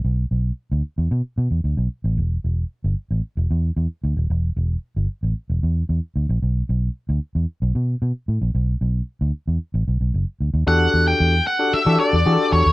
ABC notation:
X:1
M:4/4
L:1/16
Q:1/4=113
K:Em
V:1 name="Lead electric guitar"
z16 | z16 | z16 | z16 |
z16 | f3 g3 f2 e2 d4 ^c2 |]
V:2 name="Tine electric piano"
z16 | z16 | z16 | z16 |
z16 | [DFGA]4- [DFGA] z2 [DFGA] z [DFGA]2 z [DFG^GA]3 z |]
V:3 name="Fingered electric bass" clef=bass
B,,,2 B,,,2 z D,, z E,, B,, z B,, E,, D,, B,,, z A,,, | E,,,2 E,,,2 z G,,, z A,,, z E,,, E,,2 E,, z D,, ^D,,, | E,,,2 E,,,2 z G,,, z A,,, z E,,, E,,2 E,, z D,, ^A,,, | B,,,2 B,,,2 z D,, z E,, z B,,, B,,2 B,, z A,, ^A,,, |
B,,,2 B,,,2 z D,, z E,, z A,,, B,,, B,,, F,,, z D,, ^D,, | E,,2 E,,2 E,,2 z3 E, z E,, E, z E,, ^D,, |]